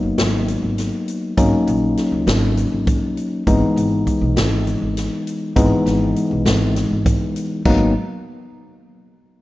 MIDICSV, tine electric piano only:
0, 0, Header, 1, 2, 480
1, 0, Start_track
1, 0, Key_signature, 5, "minor"
1, 0, Tempo, 598205
1, 1102, Time_signature, 7, 3, 24, 8
1, 7557, End_track
2, 0, Start_track
2, 0, Title_t, "Tine electric piano"
2, 0, Program_c, 0, 4
2, 0, Note_on_c, 0, 54, 68
2, 0, Note_on_c, 0, 58, 62
2, 0, Note_on_c, 0, 59, 70
2, 0, Note_on_c, 0, 63, 78
2, 1071, Note_off_c, 0, 54, 0
2, 1071, Note_off_c, 0, 58, 0
2, 1073, Note_off_c, 0, 59, 0
2, 1074, Note_off_c, 0, 63, 0
2, 1101, Note_on_c, 0, 54, 66
2, 1101, Note_on_c, 0, 58, 64
2, 1102, Note_on_c, 0, 61, 70
2, 1104, Note_on_c, 0, 63, 77
2, 2749, Note_off_c, 0, 54, 0
2, 2749, Note_off_c, 0, 58, 0
2, 2749, Note_off_c, 0, 61, 0
2, 2750, Note_off_c, 0, 63, 0
2, 2783, Note_on_c, 0, 52, 71
2, 2784, Note_on_c, 0, 56, 72
2, 2785, Note_on_c, 0, 59, 70
2, 2787, Note_on_c, 0, 63, 83
2, 4429, Note_off_c, 0, 52, 0
2, 4430, Note_off_c, 0, 56, 0
2, 4431, Note_off_c, 0, 59, 0
2, 4431, Note_off_c, 0, 63, 0
2, 4461, Note_on_c, 0, 52, 80
2, 4462, Note_on_c, 0, 56, 74
2, 4462, Note_on_c, 0, 59, 78
2, 4463, Note_on_c, 0, 63, 82
2, 6109, Note_off_c, 0, 52, 0
2, 6109, Note_off_c, 0, 56, 0
2, 6109, Note_off_c, 0, 59, 0
2, 6110, Note_off_c, 0, 63, 0
2, 6143, Note_on_c, 0, 54, 77
2, 6143, Note_on_c, 0, 59, 73
2, 6143, Note_on_c, 0, 63, 83
2, 6144, Note_on_c, 0, 58, 69
2, 6366, Note_off_c, 0, 54, 0
2, 6366, Note_off_c, 0, 58, 0
2, 6366, Note_off_c, 0, 59, 0
2, 6366, Note_off_c, 0, 63, 0
2, 7557, End_track
0, 0, End_of_file